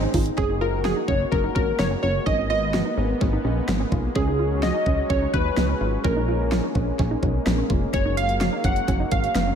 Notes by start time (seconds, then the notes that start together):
Already playing: G#3 C4 D#4 A#4
0.02 D#4
0.14 G#1 F4, kick, open hi-hat
0.26 closed hi-hat
0.37 F#1 G#3 A#3 C#4 F#4 G#4, kick
0.50 D#4
0.61 F4 A#4
0.85 F#4 G#4, snare
0.97 D#4
1.08 F#1 C#4 C#5, kick
1.32 F#1 C#4 A#4, kick
1.44 D#4
1.55 G#1 C#4 A#4, kick
1.79 F#1 B3 C#5, snare
1.91 C#4
2.03 F#1 F4 C#5
2.26 G#1 B3 C#4 D#5, kick
2.38 D#4
2.50 F4 D#5
2.74 F#4, snare
2.86 D#4
2.98 G#1 C#4
3.21 G#1 C#4, kick
3.33 D#4
3.45 A#1 C#4
3.68 G#1 B3, snare
3.80 C#4
3.92 B1 F4, kick
4.15 C#2 F#3 C#4 G#4, kick
4.28 D#4
4.39 F4
4.63 F#4 D#5, snare
4.74 D#4
4.86 C#2 C#4, kick
5.10 C#2 C#4 C#5, kick
5.22 D#4
5.33 D#2 C#4 B4, kick
5.57 C#2 B3, snare
5.69 C#4
5.81 G#1 F4
6.04 A#1 A#3 C#4 A#4, kick
6.16 D#4
6.28 F4
6.52 F4, snare
6.64 D#4
6.75 A#1 C#4, kick
6.99 A#1 C#4, kick
7.11 D#4
7.23 B1 C#4, kick
7.46 A#1 B3, snare
7.58 C#4
7.70 F1 F4, kick
7.93 F#1 F#3 C#4 C#5, kick, closed hi-hat
8.05 D#4
8.17 F4 F5, closed hi-hat
8.29 closed hi-hat
8.41 F#4, snare, closed hi-hat
8.53 D#4
8.64 F#1 C#4 F#5, kick, closed hi-hat
8.76 closed hi-hat
8.88 F#1 C#4, kick, closed hi-hat
9.00 D#4
9.11 G#1 C#4 F5, kick, closed hi-hat
9.24 closed hi-hat
9.35 F#1 B3, snare, closed hi-hat
9.47 C#4